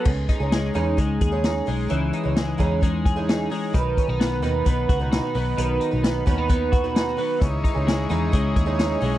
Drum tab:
CC |x-------|--------|--------|--------|
HH |-xxxxxxo|xxxxxxxo|xxxxxxxo|xxxxxxxo|
SD |--o---o-|--o---o-|--o---o-|--o---o-|
BD |oo--oo--|---ooo--|oo--oo--|---ooo--|

CC |--------|
HH |xxxxxxxo|
SD |--o---o-|
BD |oo--oo--|